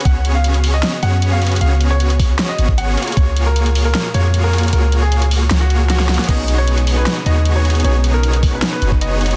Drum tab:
CC |--------------------------------|--------------------------------|--------------------------------|--------------------------------|
HH |x---x---x-x-o---x---x---x---xxxx|x---x---x-x-o---x---x---x---xxxx|x---x---x-x-o---x---x---x---xxxx|x---x---x-x-o---x---x---x---xxxx|
SD |----------------o---------------|----------------o---------------|----------------o---------------|----------------o-------o-o-o-o-|
BD |o-------------------------------|------------o---------o---------|o-------------------------------|--------------------------------|

CC |x-------------------------------|--------------------------------|
HH |x---x---x-x-o---x---x---x---xxxx|x---x---x-x-o---x---x---x---xxx-|
SD |----------------o---------------|----------------o---------------|
BD |o-------------------------------|------------o---------o---------|